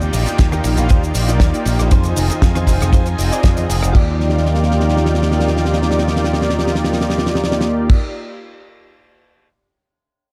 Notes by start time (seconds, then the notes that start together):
Already playing: A#3 D#4 F4 G4 D5 F5 G5
0.01 low conga, cabasa
0.13 A#1, open hi-hat, ride, muted conga, cabasa
0.26 A#3 D#4 F4 G4, closed hi-hat, muted conga, high conga, cabasa
0.38 D#2, kick, snare, closed hi-hat, ride, low conga, cabasa
0.52 D#4 F4 G4 A#4, cross-stick, high conga, cabasa
0.64 A#1 A#3 D#4 F4 G4 D5, open hi-hat, ride, cabasa
0.77 A#1, closed hi-hat, high conga, cabasa
0.89 D#2 D#4 F4 G4 C5, kick, closed hi-hat, ride, cabasa
1.02 A#3 D#4 F4 G4 D5, cabasa
1.15 A#1, muted clean electric guitar stroke, open hi-hat, ride, cabasa
1.28 D#4 F4 G4 D5, closed hi-hat, cabasa
1.40 D#2 A#3 D#4 F4 G4 D5, kick, snare, closed hi-hat, ride, cabasa
1.54 closed hi-hat, cabasa
1.65 A#1 A#3 D#4 F4 G4 C5, open hi-hat, ride, cabasa
1.79 A#1, cross-stick, closed hi-hat, cabasa
1.91 F2 C4 D#4 F4 G#4 C5 D#5 G#5, kick, closed hi-hat, ride, muted conga, cabasa
2.04 closed hi-hat, low conga, cabasa
2.16 F1, open hi-hat, ride, muted conga, cabasa
2.29 C4 D#4 F4 G#4 F5, muted picked electric bass stroke, closed hi-hat, muted conga, high conga, cabasa
2.42 F2, kick, snare, closed hi-hat, ride, low conga, cabasa
2.55 D#4 F4 G#4 C5, cross-stick, closed hi-hat, high conga, cabasa
2.67 F1 C4 D#4 F4 G#4 D#5, kick, open hi-hat, ride, cabasa
2.81 F1, cross-stick, closed hi-hat, high conga, low conga, cabasa
2.93 F2 D#4 F4 G#4 C5, kick, closed hi-hat, ride, cabasa
3.06 C4 D#4 F4 G#4 D#5, closed hi-hat, cabasa
3.18 F1, muted clean electric guitar stroke, open hi-hat, ride, cabasa
3.32 D#4 F4 G#4 D5, muted picked electric bass stroke, closed hi-hat, cabasa
3.43 F2 C4 D#4 F4 G#4 D#5, kick, snare, closed hi-hat, ride, cabasa
3.57 closed hi-hat, muted conga, cabasa
3.69 F1 C4 D#4 F4 G#4 D5, open hi-hat, ride, cabasa
3.83 F1, cross-stick, closed hi-hat, cabasa
3.93 D#2 A#3 D#4 F4 G4 D5 F5 G5, kick, crash
3.97 D5
4.20 snare
4.29 snare
4.38 snare
4.46 snare
4.55 snare
4.63 snare
4.71 snare
4.80 snare
4.89 snare
4.97 snare
5.06 snare
5.14 snare
5.22 snare
5.31 snare
5.40 snare
5.48 snare
5.57 snare
5.65 snare
5.73 snare
5.82 snare
5.91 snare
5.99 snare
6.08 snare
6.16 snare
6.24 snare
6.33 snare
6.42 snare
6.50 snare
6.59 snare
6.67 snare
6.75 snare
6.84 snare
6.93 snare
7.01 snare
7.10 snare
7.18 snare
7.26 snare
7.35 snare
7.44 snare
7.52 snare
7.61 snare
7.89 kick, crash